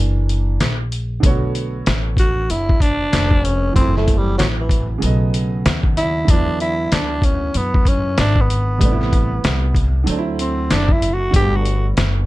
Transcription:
0.00 0.57 F#1 medium
0.00 0.57 E3 medium
0.00 0.57 A#3 medium
0.00 0.57 D4 medium
0.29 closed hi-hat medium
0.60 1.21 A#1 loud
0.60 snare loud
0.60 closed hi-hat medium
0.92 closed hi-hat medium
1.20 1.83 B1 medium
1.20 3.70 D3 medium
1.20 3.71 A3 medium
1.20 kick loud
1.20 closed hi-hat loud
1.24 3.72 B3 medium
1.24 3.74 F#4 medium
1.24 3.73 C#5 medium
1.55 closed hi-hat medium
1.86 2.47 A1 loud
1.86 snare loud
1.86 closed hi-hat medium
2.17 2.52 F#4 medium
2.17 kick medium
2.17 closed hi-hat medium
2.50 3.10 F#1 loud
2.50 2.83 E4 loud
2.50 closed hi-hat loud
2.69 kick loud
2.80 3.46 D4 loud
2.80 kick medium
2.80 closed hi-hat medium
3.13 3.73 F1 medium
3.13 snare loud
3.13 closed hi-hat medium
3.31 kick medium
3.45 3.75 C#4 medium
3.45 closed hi-hat medium
3.72 4.36 F#1 loud
3.72 4.98 E3 medium
3.72 4.99 F#3 medium
3.72 5.00 A3 medium
3.72 3.95 C4 loud
3.72 kick loud
3.72 closed hi-hat medium
3.78 5.01 C4 medium
3.78 5.02 E4 medium
3.96 4.19 A3 medium
3.96 snare soft
4.08 kick medium
4.08 closed hi-hat medium
4.18 4.37 G3 medium
4.38 5.00 A1 medium
4.38 4.48 F#3 medium
4.38 snare loud
4.38 closed hi-hat loud
4.60 4.90 E3 medium
4.69 kick medium
4.69 closed hi-hat medium
4.98 6.24 C#3 medium
4.98 6.25 F#3 medium
4.98 6.26 A3 medium
4.98 closed hi-hat medium
5.03 5.63 B1 loud
5.03 6.27 B3 medium
5.03 6.28 D#5 medium
5.34 closed hi-hat medium
5.66 6.26 D#2 loud
5.66 snare loud
5.66 closed hi-hat medium
5.83 kick loud
5.97 6.32 E4 loud
5.97 closed hi-hat medium
6.25 6.89 E2 loud
6.25 8.75 D3 medium
6.25 8.76 F#3 medium
6.25 kick loud
6.25 closed hi-hat loud
6.29 8.77 E3 medium
6.29 8.78 B3 medium
6.29 6.61 D4 loud
6.29 8.79 E4 medium
6.60 6.95 E4 loud
6.60 closed hi-hat medium
6.92 7.52 D2 medium
6.92 7.26 D4 loud
6.92 snare loud
6.92 closed hi-hat medium
7.22 7.58 C#4 medium
7.22 kick loud
7.22 closed hi-hat medium
7.54 8.15 F#2 medium
7.54 7.89 B3 medium
7.54 closed hi-hat medium
7.74 kick loud
7.85 8.19 C#4 medium
7.85 kick medium
7.85 closed hi-hat medium
8.18 8.78 G#1 loud
8.18 8.42 D4 loud
8.18 snare loud
8.18 closed hi-hat medium
8.36 kick medium
8.41 9.98 B3 medium
8.50 closed hi-hat medium
8.78 9.41 A1 loud
8.78 10.03 C3 medium
8.78 10.04 G3 medium
8.78 10.05 A3 medium
8.78 kick loud
8.78 closed hi-hat loud
8.83 10.06 B3 medium
8.83 8.91 D4 medium
8.92 10.11 E4 medium
9.01 snare soft
9.13 kick loud
9.13 closed hi-hat medium
9.44 10.05 C2 medium
9.44 snare loud
9.44 closed hi-hat medium
9.75 kick medium
9.75 closed hi-hat medium
10.04 11.29 D3 medium
10.04 11.31 F#3 medium
10.04 closed hi-hat loud
10.08 10.68 D2 loud
10.08 11.32 A3 medium
10.08 11.33 C4 medium
10.08 10.17 D4 medium
10.18 11.37 E4 medium
10.39 10.73 C4 medium
10.39 closed hi-hat medium
10.70 11.31 F#1 medium
10.70 10.94 D4 loud
10.70 snare loud
10.70 closed hi-hat medium
10.88 11.15 E4 medium
10.88 kick medium
11.02 closed hi-hat medium
11.13 11.34 F#4 medium
11.31 11.94 G1 loud
11.31 12.26 D3 medium
11.31 12.26 G3 medium
11.31 12.26 A3 medium
11.31 kick loud
11.31 closed hi-hat loud
11.36 12.26 B3 medium
11.36 12.26 F#4 medium
11.36 11.58 G4 loud
11.56 11.87 F#4 medium
11.65 closed hi-hat medium
11.97 12.26 F#1 loud
11.97 snare loud
11.97 closed hi-hat medium

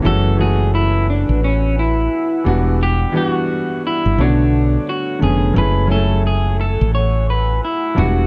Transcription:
0.00 0.29 E3 medium
0.00 0.30 G#3 medium
0.00 2.41 B4 medium
0.00 4.13 F#5 medium
0.00 2.43 G#5 medium
0.00 2.43 E6 medium
0.04 1.25 F#1 loud
0.04 0.30 A3 medium
0.04 0.31 C#4 medium
0.04 0.31 F#4 medium
0.04 0.40 A4 loud
0.37 1.36 E3 medium
0.37 1.36 G#3 medium
0.37 1.37 A3 medium
0.37 1.37 C#4 medium
0.37 1.38 F#4 medium
0.37 0.74 G#4 medium
0.75 1.06 E4 medium
1.10 1.44 D4 medium
1.29 2.07 A1 medium
1.44 1.78 C#4 medium
1.79 2.43 E4 medium
2.44 3.04 E1 medium
2.44 3.03 E3 medium
2.44 3.03 G3 medium
2.44 4.16 G3 medium
2.44 3.04 B3 medium
2.44 3.04 D4 medium
2.44 3.05 F#4 medium
2.44 4.16 E5 medium
2.83 3.13 G4 medium
3.12 4.11 E3 medium
3.12 4.12 G3 medium
3.12 4.12 B3 medium
3.12 4.13 D4 medium
3.12 4.13 F#4 medium
3.17 3.28 G4 medium
3.28 3.86 F#4 medium
3.87 4.20 E4 medium
4.06 4.16 G1 medium
4.17 4.77 B1 medium
4.17 4.25 C#3 medium
4.17 7.93 A3 medium
4.17 5.04 A3 medium
4.17 5.04 B3 medium
4.17 4.90 D4 medium
4.17 5.54 C#5 medium
4.17 5.05 C#5 medium
4.17 5.54 B5 medium
4.22 5.07 D3 medium
4.22 5.05 F#4 medium
4.89 5.20 F#4 medium
5.19 5.51 F1 medium
5.19 5.46 D3 medium
5.19 5.47 A3 medium
5.19 5.47 B3 medium
5.19 5.48 C#4 medium
5.19 5.48 G#4 medium
5.23 5.54 G#4 medium
5.54 6.76 F#1 loud
5.54 5.81 F#3 medium
5.54 5.82 A3 medium
5.54 5.82 C#4 medium
5.54 5.82 E4 medium
5.54 5.83 G#4 medium
5.54 8.27 F#5 medium
5.54 7.94 G#5 medium
5.54 7.94 E6 medium
5.58 5.89 B4 medium
5.87 6.87 F#3 medium
5.87 5.97 G#3 medium
5.87 6.88 C#4 medium
5.87 6.88 E4 medium
5.87 6.89 G#5 medium
5.92 6.90 A3 medium
5.92 6.26 A4 medium
6.27 6.60 G#4 medium
6.61 6.94 A4 medium
6.81 7.59 A1 medium
6.95 7.30 C#5 loud
7.30 7.64 B4 loud
7.65 7.99 E4 medium
7.94 8.27 E1 loud
7.94 8.04 F#3 medium
7.94 8.27 B3 medium
7.94 8.27 D4 medium
7.94 8.27 E4 medium
7.94 8.27 F#4 medium
7.94 8.27 D5 medium
7.94 8.27 E5 medium
7.94 8.27 E6 medium
7.99 8.27 G3 medium
7.99 8.27 F#4 medium

